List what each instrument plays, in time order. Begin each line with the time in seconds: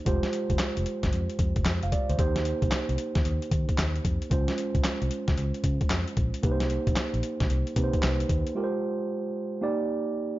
0.05 fingered electric bass F1, tine electric piano G#3 F4 G4 C5, kick, closed hi-hat
0.23 snare, closed hi-hat
0.33 closed hi-hat
0.50 fingered electric bass F1, kick, closed hi-hat
0.59 snare, clap, closed hi-hat
0.77 fingered electric bass F1, closed hi-hat
0.86 closed hi-hat
1.03 fingered electric bass G1, kick, snare, closed hi-hat
1.13 fingered electric bass F2, closed hi-hat
1.30 closed hi-hat
1.39 fingered electric bass F2, kick, closed hi-hat
1.56 fingered electric bass F1, kick, closed hi-hat
1.65 fingered electric bass F2, snare, clap, closed hi-hat
1.83 fingered electric bass F1, tine electric piano F5, closed hi-hat
1.92 tine electric piano D5, kick, closed hi-hat
2.09 fingered electric bass D2, tine electric piano C5, closed hi-hat
2.18 fingered electric bass D#2, tine electric piano A#3 D#4 G4 C5, kick, closed hi-hat
2.36 snare, closed hi-hat
2.45 closed hi-hat
2.62 fingered electric bass C2, kick, closed hi-hat
2.71 muted fingered electric bass stroke, snare, clap, closed hi-hat
2.89 fingered electric bass C2, closed hi-hat
2.98 closed hi-hat
3.15 fingered electric bass D#2, kick, snare, closed hi-hat
3.25 fingered electric bass D#2, closed hi-hat
3.42 closed hi-hat
3.51 fingered electric bass D#3, kick, closed hi-hat
3.69 kick, closed hi-hat
3.78 fingered electric bass D#2, snare, clap, closed hi-hat
3.96 closed hi-hat
4.05 fingered electric bass F2, kick, closed hi-hat
4.22 closed hi-hat
4.30 fingered electric bass C#2, tine electric piano G#3 C#4 F4 C5, kick, closed hi-hat
4.48 snare, closed hi-hat
4.58 closed hi-hat
4.75 fingered electric bass C#2, kick, closed hi-hat
4.84 snare, clap, closed hi-hat
5.02 fingered electric bass C2, closed hi-hat
5.11 closed hi-hat
5.28 fingered electric bass C#2, kick, snare, closed hi-hat
5.37 fingered electric bass C#2, closed hi-hat
5.54 closed hi-hat
5.64 fingered electric bass C#3, kick, closed hi-hat
5.81 kick, closed hi-hat
5.90 fingered electric bass F2, snare, clap, closed hi-hat
6.08 closed hi-hat
6.17 fingered electric bass A#1, kick, closed hi-hat
6.34 closed hi-hat
6.43 fingered electric bass C2, tine electric piano A#3 D#4 G4 B4, kick, closed hi-hat
6.51 tine electric piano C5
6.60 snare, closed hi-hat
6.70 closed hi-hat
6.87 fingered electric bass A#1, kick, closed hi-hat
6.96 muted fingered electric bass stroke, snare, clap, closed hi-hat
7.14 fingered electric bass A#1, closed hi-hat
7.23 closed hi-hat
7.40 fingered electric bass C2, kick, snare, closed hi-hat
7.50 fingered electric bass C2, closed hi-hat
7.67 closed hi-hat
7.76 fingered electric bass C3, tine electric piano A#3 D#4 G4 B4, kick, closed hi-hat
7.84 tine electric piano C5
7.93 kick, closed hi-hat
8.02 fingered electric bass C2, snare, clap, closed hi-hat
8.20 closed hi-hat
8.29 fingered electric bass D#2, kick, closed hi-hat
8.47 closed hi-hat
8.55 tine electric piano G#3 F4 G4 A#4
8.64 tine electric piano C5
9.61 tine electric piano A#3 D#4 G4 D5